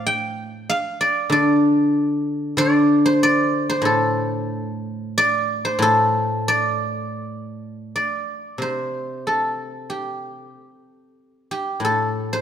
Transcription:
0.00 0.66 A2 medium
0.00 0.42 A3 soft
0.00 0.13 C4 soft
0.00 1.07 C5 medium
0.00 1.00 D5 medium
0.00 0.69 F5 medium
0.00 0.22 A5 medium
0.07 1.62 G5 loud
0.70 2.36 F5 loud
1.01 1.32 D5 medium
1.30 2.56 D3 medium
1.30 2.58 D5 medium
2.57 4.48 D3 medium
2.57 3.23 D5 loud
3.06 3.69 C5 loud
3.23 5.08 D5 loud
3.70 5.64 C5 medium
3.82 5.77 A2 medium
3.82 5.82 A4 medium
5.18 6.48 D5 loud
5.65 7.63 C5 medium
5.79 7.90 A2 medium
5.79 8.02 A4 loud
6.48 7.95 D5 loud
7.96 9.80 D5 medium
8.58 10.55 C3 soft
8.58 10.60 C5 medium
9.27 11.46 A4 medium
9.90 11.51 G4 medium
11.51 12.41 G4 medium
11.80 12.41 A2 soft
11.85 12.41 A4 medium
12.33 12.41 C5 medium

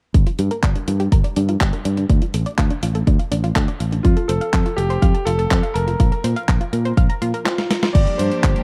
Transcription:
0.14 0.24 G1 medium
0.14 0.24 D4 medium
0.14 kick loud
0.14 closed hi-hat medium
0.27 0.37 F4 medium
0.27 closed hi-hat soft
0.39 0.48 G2 medium
0.39 0.45 G4 medium
0.39 closed hi-hat medium
0.51 0.57 A#4 loud
0.51 closed hi-hat soft
0.63 0.73 G1 medium
0.63 0.73 D5 loud
0.63 kick loud
0.63 clap loud
0.63 closed hi-hat medium
0.75 0.87 D4 medium
0.75 closed hi-hat soft
0.88 1.06 G2 medium
0.88 0.98 F4 medium
0.88 closed hi-hat medium
1.00 1.10 G4 medium
1.00 closed hi-hat soft
1.12 1.21 G1 medium
1.12 1.22 A#4 medium
1.12 kick loud
1.12 closed hi-hat medium
1.24 1.36 D5 medium
1.24 closed hi-hat soft
1.36 1.55 G2 medium
1.36 1.48 D4 loud
1.36 closed hi-hat medium
1.49 1.55 F4 loud
1.49 closed hi-hat soft
1.61 1.70 G1 medium
1.61 1.71 G4 loud
1.61 kick medium
1.61 clap loud
1.61 closed hi-hat medium
1.73 1.85 A#4 medium
1.73 closed hi-hat soft
1.85 2.04 G2 medium
1.85 1.95 D5 medium
1.85 closed hi-hat medium
1.97 2.03 D4 medium
1.97 closed hi-hat soft
2.10 2.19 D2 medium
2.10 2.20 D4 medium
2.10 kick loud
2.10 closed hi-hat medium
2.22 2.32 F4 medium
2.22 closed hi-hat soft
2.34 2.43 A1 loud
2.34 2.40 A4 medium
2.34 closed hi-hat medium
2.46 2.52 D5 medium
2.46 closed hi-hat soft
2.58 2.68 D2 medium
2.58 2.68 F5 loud
2.58 kick loud
2.58 clap loud
2.58 closed hi-hat medium
2.70 2.82 D4 medium
2.70 closed hi-hat soft
2.83 3.02 A1 medium
2.83 2.93 F4 medium
2.83 closed hi-hat medium
2.95 3.05 A4 loud
2.95 closed hi-hat soft
3.07 3.17 D2 medium
3.07 3.17 D5 medium
3.07 kick loud
3.07 closed hi-hat medium
3.19 3.31 F5 medium
3.19 closed hi-hat soft
3.31 3.50 A1 medium
3.31 3.43 D4 loud
3.31 closed hi-hat medium
3.44 3.50 F4 loud
3.44 closed hi-hat soft
3.56 3.65 D2 medium
3.56 3.66 A4 loud
3.56 kick loud
3.56 clap loud
3.56 closed hi-hat medium
3.68 3.80 D5 medium
3.68 closed hi-hat soft
3.80 3.99 A1 medium
3.80 3.90 F5 medium
3.80 closed hi-hat medium
3.92 3.98 D4 medium
3.92 closed hi-hat soft
4.03 4.14 F2 medium
4.03 4.29 F4 medium
4.03 4.15 F4 medium
4.03 kick loud
4.03 closed hi-hat medium
4.17 4.27 A4 medium
4.17 closed hi-hat soft
4.28 4.38 F1 loud
4.28 4.79 A4 medium
4.28 4.35 C5 medium
4.28 closed hi-hat medium
4.41 4.47 F5 medium
4.41 closed hi-hat soft
4.53 4.63 F2 medium
4.53 4.63 A5 loud
4.53 kick loud
4.53 clap loud
4.53 closed hi-hat medium
4.66 4.77 F4 medium
4.66 closed hi-hat soft
4.76 4.97 F1 loud
4.76 5.27 G4 loud
4.76 4.88 A4 medium
4.76 closed hi-hat medium
4.90 5.00 C5 loud
4.90 closed hi-hat soft
5.02 5.12 F2 medium
5.02 5.12 F5 loud
5.02 kick loud
5.02 closed hi-hat medium
5.14 5.26 A5 medium
5.14 closed hi-hat soft
5.25 5.45 F1 loud
5.25 5.38 F4 medium
5.25 5.76 A4 loud
5.25 closed hi-hat medium
5.39 5.45 A4 loud
5.39 closed hi-hat soft
5.51 5.60 F2 medium
5.51 5.61 C5 medium
5.51 kick loud
5.51 clap loud
5.51 closed hi-hat medium
5.63 5.75 F5 medium
5.63 closed hi-hat soft
5.74 5.94 F1 medium
5.74 7.66 A#4 loud
5.74 5.85 A5 medium
5.74 closed hi-hat medium
5.88 5.94 F4 medium
5.88 closed hi-hat soft
6.00 6.09 A#1 loud
6.00 6.10 F4 medium
6.00 kick loud
6.00 closed hi-hat medium
6.12 6.22 A#4 medium
6.12 closed hi-hat soft
6.24 6.33 A#2 loud
6.24 6.30 C5 medium
6.24 closed hi-hat medium
6.36 6.42 F5 loud
6.36 closed hi-hat soft
6.48 6.58 A#1 medium
6.48 6.58 A#5 loud
6.48 kick loud
6.48 clap loud
6.48 closed hi-hat medium
6.61 6.72 F4 medium
6.61 closed hi-hat soft
6.73 6.92 A#2 medium
6.73 6.83 A#4 medium
6.73 closed hi-hat medium
6.85 6.95 C5 loud
6.85 closed hi-hat soft
6.97 7.07 A#1 medium
6.97 7.07 F5 loud
6.97 kick loud
6.97 closed hi-hat medium
7.09 7.21 A#5 medium
7.09 closed hi-hat soft
7.22 7.31 A#2 medium
7.22 7.33 F4 medium
7.22 closed hi-hat medium
7.34 7.40 A#4 loud
7.34 closed hi-hat soft
7.45 7.91 F4 medium
7.45 7.56 C5 loud
7.45 snare medium
7.45 clap loud
7.45 closed hi-hat medium
7.58 7.70 F5 medium
7.58 snare medium
7.58 closed hi-hat soft
7.71 7.81 A#5 medium
7.71 snare medium
7.71 closed hi-hat medium
7.83 7.89 F4 medium
7.83 snare medium
7.83 closed hi-hat soft
7.93 8.04 G1 medium
7.93 8.63 F3 medium
7.93 8.63 G3 medium
7.93 8.63 A#3 medium
7.93 8.63 D4 medium
7.93 8.63 G4 medium
7.93 8.19 D5 loud
7.93 kick loud
7.93 closed hi-hat medium
7.93 crash medium
8.07 closed hi-hat soft
8.18 8.29 G2 loud
8.18 8.63 C5 loud
8.18 closed hi-hat medium
8.32 closed hi-hat soft
8.44 8.53 G1 medium
8.44 kick loud
8.44 clap loud
8.44 closed hi-hat medium
8.56 closed hi-hat soft

